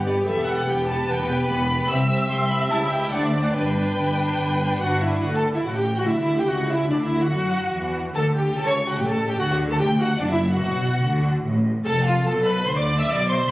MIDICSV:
0, 0, Header, 1, 6, 480
1, 0, Start_track
1, 0, Key_signature, 1, "major"
1, 0, Tempo, 410678
1, 297, Time_signature, 4, 2, 24, 8
1, 3654, Tempo, 419287
1, 6076, Key_signature, 2, "major"
1, 9414, Tempo, 410959
1, 15668, End_track
2, 0, Start_track
2, 0, Title_t, "Violin section"
2, 0, Program_c, 0, 48
2, 70, Note_on_c, 0, 74, 54
2, 163, Note_off_c, 0, 74, 0
2, 300, Note_on_c, 0, 76, 67
2, 533, Note_off_c, 0, 76, 0
2, 535, Note_on_c, 0, 78, 61
2, 773, Note_off_c, 0, 78, 0
2, 794, Note_on_c, 0, 79, 65
2, 1020, Note_on_c, 0, 81, 66
2, 1023, Note_off_c, 0, 79, 0
2, 1251, Note_off_c, 0, 81, 0
2, 1277, Note_on_c, 0, 79, 76
2, 1498, Note_off_c, 0, 79, 0
2, 1512, Note_on_c, 0, 79, 69
2, 1604, Note_off_c, 0, 79, 0
2, 1735, Note_on_c, 0, 83, 73
2, 2205, Note_off_c, 0, 83, 0
2, 2214, Note_on_c, 0, 88, 83
2, 2690, Note_on_c, 0, 84, 78
2, 2691, Note_off_c, 0, 88, 0
2, 2919, Note_on_c, 0, 83, 69
2, 2929, Note_off_c, 0, 84, 0
2, 3013, Note_off_c, 0, 83, 0
2, 3163, Note_on_c, 0, 81, 84
2, 3256, Note_off_c, 0, 81, 0
2, 3395, Note_on_c, 0, 79, 70
2, 3628, Note_on_c, 0, 78, 66
2, 3641, Note_off_c, 0, 79, 0
2, 3754, Note_on_c, 0, 76, 59
2, 3761, Note_off_c, 0, 78, 0
2, 3845, Note_off_c, 0, 76, 0
2, 3985, Note_on_c, 0, 78, 59
2, 4039, Note_off_c, 0, 78, 0
2, 4098, Note_on_c, 0, 79, 69
2, 5541, Note_off_c, 0, 79, 0
2, 5574, Note_on_c, 0, 78, 73
2, 5808, Note_off_c, 0, 78, 0
2, 5809, Note_on_c, 0, 76, 57
2, 6048, Note_on_c, 0, 78, 76
2, 6064, Note_off_c, 0, 76, 0
2, 6180, Note_off_c, 0, 78, 0
2, 6204, Note_on_c, 0, 81, 68
2, 6295, Note_off_c, 0, 81, 0
2, 6433, Note_on_c, 0, 76, 56
2, 6482, Note_off_c, 0, 76, 0
2, 6555, Note_on_c, 0, 78, 53
2, 6671, Note_on_c, 0, 79, 61
2, 6673, Note_off_c, 0, 78, 0
2, 6908, Note_off_c, 0, 79, 0
2, 6911, Note_on_c, 0, 78, 58
2, 7033, Note_off_c, 0, 78, 0
2, 7033, Note_on_c, 0, 76, 69
2, 7131, Note_off_c, 0, 76, 0
2, 7145, Note_on_c, 0, 76, 64
2, 7383, Note_off_c, 0, 76, 0
2, 7393, Note_on_c, 0, 79, 62
2, 7491, Note_on_c, 0, 78, 64
2, 7512, Note_off_c, 0, 79, 0
2, 7727, Note_on_c, 0, 76, 66
2, 7739, Note_off_c, 0, 78, 0
2, 7976, Note_off_c, 0, 76, 0
2, 7977, Note_on_c, 0, 74, 68
2, 8027, Note_off_c, 0, 74, 0
2, 8104, Note_on_c, 0, 76, 65
2, 8337, Note_off_c, 0, 76, 0
2, 8340, Note_on_c, 0, 78, 69
2, 9174, Note_off_c, 0, 78, 0
2, 9405, Note_on_c, 0, 81, 79
2, 9498, Note_off_c, 0, 81, 0
2, 9655, Note_on_c, 0, 79, 67
2, 9888, Note_off_c, 0, 79, 0
2, 9895, Note_on_c, 0, 81, 80
2, 10012, Note_on_c, 0, 85, 78
2, 10013, Note_off_c, 0, 81, 0
2, 10252, Note_off_c, 0, 85, 0
2, 10265, Note_on_c, 0, 78, 65
2, 10377, Note_on_c, 0, 79, 67
2, 10379, Note_off_c, 0, 78, 0
2, 10495, Note_off_c, 0, 79, 0
2, 10504, Note_on_c, 0, 81, 74
2, 10733, Note_off_c, 0, 81, 0
2, 10742, Note_on_c, 0, 79, 66
2, 10789, Note_off_c, 0, 79, 0
2, 10855, Note_on_c, 0, 78, 87
2, 10964, Note_off_c, 0, 78, 0
2, 10978, Note_on_c, 0, 78, 76
2, 11071, Note_off_c, 0, 78, 0
2, 11220, Note_on_c, 0, 81, 75
2, 11332, Note_on_c, 0, 79, 88
2, 11335, Note_off_c, 0, 81, 0
2, 11564, Note_on_c, 0, 78, 81
2, 11567, Note_off_c, 0, 79, 0
2, 11792, Note_on_c, 0, 74, 89
2, 11803, Note_off_c, 0, 78, 0
2, 11922, Note_off_c, 0, 74, 0
2, 11925, Note_on_c, 0, 76, 78
2, 12153, Note_on_c, 0, 78, 78
2, 12164, Note_off_c, 0, 76, 0
2, 13003, Note_off_c, 0, 78, 0
2, 13731, Note_on_c, 0, 81, 104
2, 13957, Note_on_c, 0, 77, 89
2, 13958, Note_off_c, 0, 81, 0
2, 14206, Note_on_c, 0, 81, 89
2, 14208, Note_off_c, 0, 77, 0
2, 14447, Note_on_c, 0, 83, 92
2, 14451, Note_off_c, 0, 81, 0
2, 14683, Note_on_c, 0, 84, 107
2, 14691, Note_off_c, 0, 83, 0
2, 14809, Note_off_c, 0, 84, 0
2, 14813, Note_on_c, 0, 86, 97
2, 15054, Note_off_c, 0, 86, 0
2, 15056, Note_on_c, 0, 88, 84
2, 15165, Note_on_c, 0, 86, 96
2, 15173, Note_off_c, 0, 88, 0
2, 15409, Note_off_c, 0, 86, 0
2, 15415, Note_on_c, 0, 84, 95
2, 15653, Note_off_c, 0, 84, 0
2, 15668, End_track
3, 0, Start_track
3, 0, Title_t, "Viola section"
3, 0, Program_c, 1, 48
3, 0, Note_on_c, 1, 67, 50
3, 286, Note_off_c, 1, 67, 0
3, 312, Note_on_c, 1, 69, 55
3, 779, Note_on_c, 1, 67, 46
3, 782, Note_off_c, 1, 69, 0
3, 1245, Note_off_c, 1, 67, 0
3, 1253, Note_on_c, 1, 71, 57
3, 2195, Note_off_c, 1, 71, 0
3, 2221, Note_on_c, 1, 76, 77
3, 3628, Note_off_c, 1, 76, 0
3, 3646, Note_on_c, 1, 74, 61
3, 4121, Note_off_c, 1, 74, 0
3, 4124, Note_on_c, 1, 71, 60
3, 5577, Note_on_c, 1, 66, 56
3, 5584, Note_off_c, 1, 71, 0
3, 5810, Note_off_c, 1, 66, 0
3, 5825, Note_on_c, 1, 64, 49
3, 6058, Note_on_c, 1, 66, 60
3, 6073, Note_off_c, 1, 64, 0
3, 6179, Note_on_c, 1, 69, 55
3, 6187, Note_off_c, 1, 66, 0
3, 6418, Note_on_c, 1, 64, 45
3, 6423, Note_off_c, 1, 69, 0
3, 6470, Note_off_c, 1, 64, 0
3, 6546, Note_on_c, 1, 66, 46
3, 6596, Note_off_c, 1, 66, 0
3, 6666, Note_on_c, 1, 67, 56
3, 6758, Note_off_c, 1, 67, 0
3, 6915, Note_on_c, 1, 66, 53
3, 7028, Note_on_c, 1, 64, 55
3, 7033, Note_off_c, 1, 66, 0
3, 7130, Note_off_c, 1, 64, 0
3, 7144, Note_on_c, 1, 64, 55
3, 7383, Note_off_c, 1, 64, 0
3, 7383, Note_on_c, 1, 67, 57
3, 7506, Note_on_c, 1, 66, 54
3, 7507, Note_off_c, 1, 67, 0
3, 7747, Note_off_c, 1, 66, 0
3, 7752, Note_on_c, 1, 64, 58
3, 7975, Note_on_c, 1, 62, 56
3, 7988, Note_off_c, 1, 64, 0
3, 8100, Note_off_c, 1, 62, 0
3, 8101, Note_on_c, 1, 64, 58
3, 8336, Note_off_c, 1, 64, 0
3, 8340, Note_on_c, 1, 66, 56
3, 9174, Note_off_c, 1, 66, 0
3, 9403, Note_on_c, 1, 69, 72
3, 9630, Note_off_c, 1, 69, 0
3, 9640, Note_on_c, 1, 67, 57
3, 9880, Note_off_c, 1, 67, 0
3, 9882, Note_on_c, 1, 69, 74
3, 10004, Note_off_c, 1, 69, 0
3, 10008, Note_on_c, 1, 73, 67
3, 10101, Note_off_c, 1, 73, 0
3, 10244, Note_on_c, 1, 66, 53
3, 10366, Note_off_c, 1, 66, 0
3, 10371, Note_on_c, 1, 67, 53
3, 10489, Note_off_c, 1, 67, 0
3, 10489, Note_on_c, 1, 69, 64
3, 10730, Note_on_c, 1, 67, 61
3, 10731, Note_off_c, 1, 69, 0
3, 10848, Note_on_c, 1, 66, 64
3, 10852, Note_off_c, 1, 67, 0
3, 10957, Note_off_c, 1, 66, 0
3, 10971, Note_on_c, 1, 66, 62
3, 11064, Note_off_c, 1, 66, 0
3, 11199, Note_on_c, 1, 69, 66
3, 11250, Note_off_c, 1, 69, 0
3, 11327, Note_on_c, 1, 67, 73
3, 11421, Note_off_c, 1, 67, 0
3, 11565, Note_on_c, 1, 66, 66
3, 11658, Note_off_c, 1, 66, 0
3, 11812, Note_on_c, 1, 62, 76
3, 11860, Note_off_c, 1, 62, 0
3, 11926, Note_on_c, 1, 64, 67
3, 12019, Note_off_c, 1, 64, 0
3, 12159, Note_on_c, 1, 66, 69
3, 12989, Note_off_c, 1, 66, 0
3, 13731, Note_on_c, 1, 69, 87
3, 13824, Note_off_c, 1, 69, 0
3, 13978, Note_on_c, 1, 65, 74
3, 14071, Note_off_c, 1, 65, 0
3, 14198, Note_on_c, 1, 69, 85
3, 14442, Note_off_c, 1, 69, 0
3, 14443, Note_on_c, 1, 71, 85
3, 14689, Note_off_c, 1, 71, 0
3, 14690, Note_on_c, 1, 72, 84
3, 14813, Note_off_c, 1, 72, 0
3, 14816, Note_on_c, 1, 74, 82
3, 15051, Note_off_c, 1, 74, 0
3, 15071, Note_on_c, 1, 76, 78
3, 15178, Note_on_c, 1, 74, 87
3, 15181, Note_off_c, 1, 76, 0
3, 15413, Note_on_c, 1, 72, 82
3, 15415, Note_off_c, 1, 74, 0
3, 15648, Note_off_c, 1, 72, 0
3, 15668, End_track
4, 0, Start_track
4, 0, Title_t, "Violin section"
4, 0, Program_c, 2, 48
4, 66, Note_on_c, 2, 67, 41
4, 74, Note_on_c, 2, 59, 41
4, 297, Note_off_c, 2, 67, 0
4, 301, Note_off_c, 2, 59, 0
4, 324, Note_on_c, 2, 59, 45
4, 326, Note_on_c, 2, 67, 45
4, 540, Note_off_c, 2, 59, 0
4, 546, Note_off_c, 2, 67, 0
4, 554, Note_on_c, 2, 59, 45
4, 561, Note_on_c, 2, 67, 42
4, 779, Note_off_c, 2, 59, 0
4, 782, Note_off_c, 2, 67, 0
4, 801, Note_on_c, 2, 59, 45
4, 804, Note_on_c, 2, 67, 42
4, 1013, Note_off_c, 2, 67, 0
4, 1021, Note_off_c, 2, 59, 0
4, 1027, Note_on_c, 2, 67, 45
4, 1035, Note_on_c, 2, 59, 47
4, 1255, Note_off_c, 2, 67, 0
4, 1259, Note_off_c, 2, 59, 0
4, 1268, Note_on_c, 2, 67, 47
4, 1270, Note_on_c, 2, 59, 49
4, 1496, Note_off_c, 2, 67, 0
4, 1497, Note_off_c, 2, 59, 0
4, 1509, Note_on_c, 2, 59, 45
4, 1515, Note_on_c, 2, 67, 46
4, 1729, Note_off_c, 2, 59, 0
4, 1731, Note_off_c, 2, 67, 0
4, 1743, Note_on_c, 2, 59, 43
4, 1745, Note_on_c, 2, 67, 47
4, 1964, Note_off_c, 2, 67, 0
4, 1967, Note_off_c, 2, 59, 0
4, 1978, Note_on_c, 2, 67, 43
4, 1981, Note_on_c, 2, 59, 46
4, 2201, Note_off_c, 2, 67, 0
4, 2213, Note_off_c, 2, 59, 0
4, 2215, Note_on_c, 2, 67, 57
4, 2220, Note_on_c, 2, 60, 55
4, 2430, Note_off_c, 2, 67, 0
4, 2433, Note_off_c, 2, 60, 0
4, 2444, Note_on_c, 2, 67, 52
4, 2447, Note_on_c, 2, 60, 52
4, 2678, Note_off_c, 2, 60, 0
4, 2681, Note_off_c, 2, 67, 0
4, 2692, Note_on_c, 2, 60, 50
4, 2700, Note_on_c, 2, 67, 49
4, 2918, Note_off_c, 2, 60, 0
4, 2918, Note_off_c, 2, 67, 0
4, 2932, Note_on_c, 2, 60, 54
4, 2932, Note_on_c, 2, 67, 51
4, 3163, Note_off_c, 2, 67, 0
4, 3166, Note_off_c, 2, 60, 0
4, 3177, Note_on_c, 2, 64, 55
4, 3177, Note_on_c, 2, 67, 55
4, 3402, Note_off_c, 2, 64, 0
4, 3404, Note_off_c, 2, 67, 0
4, 3416, Note_on_c, 2, 64, 47
4, 3418, Note_on_c, 2, 67, 47
4, 3651, Note_off_c, 2, 64, 0
4, 3653, Note_off_c, 2, 67, 0
4, 3674, Note_on_c, 2, 62, 47
4, 3678, Note_on_c, 2, 72, 45
4, 3899, Note_off_c, 2, 62, 0
4, 3901, Note_off_c, 2, 72, 0
4, 3918, Note_on_c, 2, 62, 44
4, 3919, Note_on_c, 2, 72, 43
4, 4125, Note_off_c, 2, 62, 0
4, 4138, Note_on_c, 2, 62, 50
4, 4143, Note_off_c, 2, 72, 0
4, 4147, Note_on_c, 2, 71, 48
4, 4366, Note_off_c, 2, 71, 0
4, 4369, Note_off_c, 2, 62, 0
4, 4380, Note_on_c, 2, 71, 45
4, 4382, Note_on_c, 2, 62, 46
4, 4617, Note_off_c, 2, 71, 0
4, 4619, Note_off_c, 2, 62, 0
4, 4633, Note_on_c, 2, 71, 42
4, 4635, Note_on_c, 2, 62, 42
4, 4856, Note_off_c, 2, 71, 0
4, 4859, Note_off_c, 2, 62, 0
4, 4870, Note_on_c, 2, 71, 42
4, 4873, Note_on_c, 2, 62, 44
4, 5098, Note_off_c, 2, 62, 0
4, 5098, Note_off_c, 2, 71, 0
4, 5112, Note_on_c, 2, 62, 44
4, 5112, Note_on_c, 2, 71, 43
4, 5337, Note_off_c, 2, 71, 0
4, 5338, Note_off_c, 2, 62, 0
4, 5351, Note_on_c, 2, 71, 40
4, 5352, Note_on_c, 2, 62, 39
4, 5587, Note_off_c, 2, 62, 0
4, 5587, Note_off_c, 2, 71, 0
4, 5612, Note_on_c, 2, 71, 41
4, 5614, Note_on_c, 2, 66, 59
4, 5615, Note_on_c, 2, 62, 39
4, 5826, Note_off_c, 2, 71, 0
4, 5830, Note_off_c, 2, 66, 0
4, 5831, Note_off_c, 2, 62, 0
4, 5839, Note_on_c, 2, 71, 42
4, 5841, Note_on_c, 2, 64, 44
4, 5845, Note_on_c, 2, 62, 43
4, 6075, Note_off_c, 2, 71, 0
4, 6077, Note_off_c, 2, 62, 0
4, 6079, Note_on_c, 2, 66, 61
4, 6080, Note_off_c, 2, 64, 0
4, 6188, Note_on_c, 2, 69, 54
4, 6196, Note_off_c, 2, 66, 0
4, 6279, Note_off_c, 2, 69, 0
4, 6441, Note_on_c, 2, 64, 52
4, 6552, Note_on_c, 2, 66, 49
4, 6556, Note_off_c, 2, 64, 0
4, 6674, Note_off_c, 2, 66, 0
4, 6676, Note_on_c, 2, 67, 52
4, 6767, Note_off_c, 2, 67, 0
4, 6920, Note_on_c, 2, 66, 58
4, 6967, Note_off_c, 2, 66, 0
4, 7021, Note_on_c, 2, 64, 60
4, 7072, Note_off_c, 2, 64, 0
4, 7162, Note_on_c, 2, 64, 53
4, 7392, Note_off_c, 2, 64, 0
4, 7392, Note_on_c, 2, 67, 54
4, 7440, Note_off_c, 2, 67, 0
4, 7535, Note_on_c, 2, 66, 51
4, 7757, Note_off_c, 2, 66, 0
4, 7761, Note_on_c, 2, 64, 55
4, 7852, Note_off_c, 2, 64, 0
4, 7999, Note_on_c, 2, 62, 60
4, 8044, Note_off_c, 2, 62, 0
4, 8124, Note_on_c, 2, 64, 55
4, 8348, Note_off_c, 2, 64, 0
4, 8361, Note_on_c, 2, 66, 57
4, 9168, Note_off_c, 2, 66, 0
4, 9419, Note_on_c, 2, 69, 73
4, 9512, Note_off_c, 2, 69, 0
4, 9656, Note_on_c, 2, 67, 58
4, 9889, Note_off_c, 2, 67, 0
4, 9896, Note_on_c, 2, 69, 72
4, 10014, Note_off_c, 2, 69, 0
4, 10033, Note_on_c, 2, 73, 65
4, 10263, Note_off_c, 2, 73, 0
4, 10272, Note_on_c, 2, 66, 57
4, 10380, Note_off_c, 2, 66, 0
4, 10380, Note_on_c, 2, 67, 54
4, 10496, Note_off_c, 2, 67, 0
4, 10503, Note_on_c, 2, 69, 67
4, 10738, Note_off_c, 2, 69, 0
4, 10739, Note_on_c, 2, 67, 63
4, 10854, Note_off_c, 2, 67, 0
4, 10860, Note_on_c, 2, 66, 75
4, 10907, Note_off_c, 2, 66, 0
4, 10988, Note_on_c, 2, 66, 66
4, 11081, Note_off_c, 2, 66, 0
4, 11224, Note_on_c, 2, 69, 64
4, 11270, Note_off_c, 2, 69, 0
4, 11355, Note_on_c, 2, 67, 70
4, 11446, Note_off_c, 2, 67, 0
4, 11584, Note_on_c, 2, 66, 66
4, 11677, Note_off_c, 2, 66, 0
4, 11803, Note_on_c, 2, 62, 75
4, 11926, Note_off_c, 2, 62, 0
4, 11936, Note_on_c, 2, 64, 64
4, 12030, Note_off_c, 2, 64, 0
4, 12160, Note_on_c, 2, 66, 73
4, 12990, Note_off_c, 2, 66, 0
4, 13746, Note_on_c, 2, 69, 93
4, 13965, Note_off_c, 2, 69, 0
4, 13987, Note_on_c, 2, 65, 80
4, 14212, Note_on_c, 2, 69, 81
4, 14218, Note_off_c, 2, 65, 0
4, 14306, Note_off_c, 2, 69, 0
4, 14461, Note_on_c, 2, 71, 84
4, 14693, Note_off_c, 2, 71, 0
4, 14699, Note_on_c, 2, 72, 87
4, 14817, Note_off_c, 2, 72, 0
4, 14835, Note_on_c, 2, 74, 81
4, 15060, Note_off_c, 2, 74, 0
4, 15070, Note_on_c, 2, 76, 75
4, 15180, Note_off_c, 2, 76, 0
4, 15192, Note_on_c, 2, 74, 85
4, 15423, Note_off_c, 2, 74, 0
4, 15425, Note_on_c, 2, 72, 80
4, 15654, Note_off_c, 2, 72, 0
4, 15668, End_track
5, 0, Start_track
5, 0, Title_t, "Cello section"
5, 0, Program_c, 3, 48
5, 0, Note_on_c, 3, 43, 50
5, 241, Note_off_c, 3, 43, 0
5, 312, Note_on_c, 3, 40, 53
5, 725, Note_off_c, 3, 40, 0
5, 779, Note_on_c, 3, 40, 49
5, 1198, Note_off_c, 3, 40, 0
5, 1251, Note_on_c, 3, 40, 58
5, 1676, Note_off_c, 3, 40, 0
5, 1738, Note_on_c, 3, 40, 55
5, 2160, Note_off_c, 3, 40, 0
5, 2211, Note_on_c, 3, 36, 58
5, 2633, Note_off_c, 3, 36, 0
5, 2689, Note_on_c, 3, 36, 58
5, 3112, Note_off_c, 3, 36, 0
5, 3160, Note_on_c, 3, 37, 64
5, 3591, Note_off_c, 3, 37, 0
5, 3653, Note_on_c, 3, 38, 62
5, 4077, Note_off_c, 3, 38, 0
5, 4135, Note_on_c, 3, 43, 54
5, 4564, Note_off_c, 3, 43, 0
5, 4618, Note_on_c, 3, 43, 45
5, 5045, Note_off_c, 3, 43, 0
5, 5099, Note_on_c, 3, 43, 51
5, 5529, Note_off_c, 3, 43, 0
5, 5592, Note_on_c, 3, 43, 51
5, 6021, Note_off_c, 3, 43, 0
5, 6071, Note_on_c, 3, 50, 54
5, 6520, Note_off_c, 3, 50, 0
5, 6554, Note_on_c, 3, 45, 48
5, 7025, Note_off_c, 3, 45, 0
5, 7037, Note_on_c, 3, 50, 55
5, 7513, Note_off_c, 3, 50, 0
5, 7520, Note_on_c, 3, 49, 54
5, 7982, Note_off_c, 3, 49, 0
5, 7990, Note_on_c, 3, 50, 55
5, 8454, Note_off_c, 3, 50, 0
5, 8467, Note_on_c, 3, 54, 49
5, 8939, Note_on_c, 3, 52, 58
5, 8941, Note_off_c, 3, 54, 0
5, 9403, Note_off_c, 3, 52, 0
5, 9417, Note_on_c, 3, 50, 57
5, 9885, Note_off_c, 3, 50, 0
5, 9899, Note_on_c, 3, 49, 57
5, 10366, Note_off_c, 3, 49, 0
5, 10384, Note_on_c, 3, 45, 55
5, 10859, Note_off_c, 3, 45, 0
5, 10859, Note_on_c, 3, 50, 64
5, 11327, Note_off_c, 3, 50, 0
5, 11341, Note_on_c, 3, 38, 64
5, 11816, Note_off_c, 3, 38, 0
5, 11818, Note_on_c, 3, 42, 66
5, 12280, Note_on_c, 3, 47, 61
5, 12286, Note_off_c, 3, 42, 0
5, 12767, Note_off_c, 3, 47, 0
5, 12779, Note_on_c, 3, 50, 72
5, 13244, Note_on_c, 3, 45, 73
5, 13246, Note_off_c, 3, 50, 0
5, 13722, Note_off_c, 3, 45, 0
5, 13730, Note_on_c, 3, 41, 73
5, 14205, Note_off_c, 3, 41, 0
5, 14213, Note_on_c, 3, 47, 66
5, 14684, Note_off_c, 3, 47, 0
5, 14694, Note_on_c, 3, 50, 79
5, 15165, Note_off_c, 3, 50, 0
5, 15172, Note_on_c, 3, 47, 75
5, 15642, Note_off_c, 3, 47, 0
5, 15668, End_track
6, 0, Start_track
6, 0, Title_t, "Double bass section"
6, 0, Program_c, 4, 48
6, 0, Note_on_c, 4, 31, 51
6, 246, Note_off_c, 4, 31, 0
6, 314, Note_on_c, 4, 28, 51
6, 727, Note_off_c, 4, 28, 0
6, 783, Note_on_c, 4, 28, 54
6, 1200, Note_off_c, 4, 28, 0
6, 1261, Note_on_c, 4, 28, 56
6, 1681, Note_off_c, 4, 28, 0
6, 1737, Note_on_c, 4, 28, 60
6, 2160, Note_off_c, 4, 28, 0
6, 2215, Note_on_c, 4, 36, 61
6, 2635, Note_off_c, 4, 36, 0
6, 2684, Note_on_c, 4, 36, 63
6, 3109, Note_off_c, 4, 36, 0
6, 3162, Note_on_c, 4, 37, 63
6, 3592, Note_off_c, 4, 37, 0
6, 3637, Note_on_c, 4, 38, 60
6, 4069, Note_off_c, 4, 38, 0
6, 4122, Note_on_c, 4, 31, 55
6, 4558, Note_off_c, 4, 31, 0
6, 4617, Note_on_c, 4, 31, 50
6, 5045, Note_off_c, 4, 31, 0
6, 5103, Note_on_c, 4, 31, 49
6, 5531, Note_off_c, 4, 31, 0
6, 5590, Note_on_c, 4, 31, 49
6, 6020, Note_off_c, 4, 31, 0
6, 6066, Note_on_c, 4, 38, 50
6, 6517, Note_off_c, 4, 38, 0
6, 6548, Note_on_c, 4, 33, 50
6, 7022, Note_off_c, 4, 33, 0
6, 7035, Note_on_c, 4, 38, 53
6, 7512, Note_off_c, 4, 38, 0
6, 7513, Note_on_c, 4, 37, 50
6, 7978, Note_off_c, 4, 37, 0
6, 7988, Note_on_c, 4, 38, 54
6, 8453, Note_off_c, 4, 38, 0
6, 8460, Note_on_c, 4, 42, 53
6, 8937, Note_off_c, 4, 42, 0
6, 8940, Note_on_c, 4, 40, 54
6, 9403, Note_off_c, 4, 40, 0
6, 9412, Note_on_c, 4, 38, 56
6, 9882, Note_off_c, 4, 38, 0
6, 9891, Note_on_c, 4, 37, 62
6, 10362, Note_off_c, 4, 37, 0
6, 10385, Note_on_c, 4, 33, 61
6, 10855, Note_on_c, 4, 38, 65
6, 10859, Note_off_c, 4, 33, 0
6, 11319, Note_off_c, 4, 38, 0
6, 11333, Note_on_c, 4, 38, 60
6, 11812, Note_off_c, 4, 38, 0
6, 11819, Note_on_c, 4, 30, 70
6, 12287, Note_off_c, 4, 30, 0
6, 12292, Note_on_c, 4, 35, 65
6, 12773, Note_off_c, 4, 35, 0
6, 12778, Note_on_c, 4, 38, 66
6, 13246, Note_off_c, 4, 38, 0
6, 13261, Note_on_c, 4, 33, 71
6, 13731, Note_off_c, 4, 33, 0
6, 13740, Note_on_c, 4, 29, 73
6, 14210, Note_off_c, 4, 29, 0
6, 14227, Note_on_c, 4, 35, 71
6, 14691, Note_off_c, 4, 35, 0
6, 14707, Note_on_c, 4, 38, 72
6, 15171, Note_off_c, 4, 38, 0
6, 15185, Note_on_c, 4, 35, 68
6, 15648, Note_off_c, 4, 35, 0
6, 15668, End_track
0, 0, End_of_file